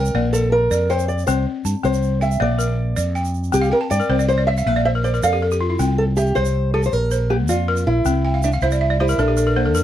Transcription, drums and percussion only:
0.05 shaker soft
0.34 shaker medium
0.72 shaker medium
0.90 shaker soft
0.99 shaker medium
1.09 shaker soft
1.18 shaker soft
1.28 shaker medium
1.65 shaker medium
1.84 shaker soft
1.93 shaker medium
2.03 shaker soft
2.22 shaker soft
2.31 shaker soft
2.60 shaker medium
2.97 shaker medium
3.16 shaker soft
3.25 shaker soft
3.34 shaker soft
3.44 shaker soft
3.53 shaker medium
3.63 shaker soft
3.91 shaker medium
4.01 shaker soft
4.20 shaker soft
4.29 shaker soft
4.57 shaker soft
5.05 shaker soft
5.14 shaker soft
5.23 shaker medium
5.51 shaker medium
5.79 shaker medium
6.17 shaker medium
6.26 shaker soft
6.36 shaker soft
6.45 shaker soft
6.83 shaker soft
6.92 shaker soft
7.11 shaker medium
7.48 shaker medium
7.77 shaker soft
8.05 shaker medium
8.43 shaker medium
8.52 shaker soft
8.61 shaker soft
8.71 shaker soft
9.09 shaker soft
9.18 shaker soft
9.37 shaker medium
9.75 shaker medium

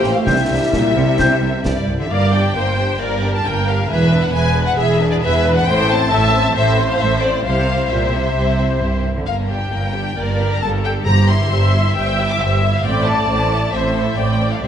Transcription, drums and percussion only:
0.04 snare soft
0.27 concert bass drum medium
0.27 snare medium
0.73 concert bass drum medium
0.73 snare medium
1.19 concert bass drum medium
1.19 snare medium
1.65 concert bass drum medium
1.65 snare medium

